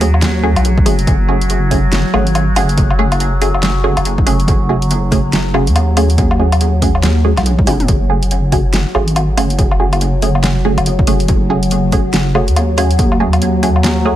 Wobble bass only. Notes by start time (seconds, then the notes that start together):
Already playing: D#2
0.56 B1
0.86 F#1
1.07 F#1
2.14 G#1
2.56 F#1
3.97 F#1
5.67 D#2
7.37 B1
7.67 E1
7.88 F#1
8.95 G#1
9.37 F#1
10.78 F#1
12.48 D#2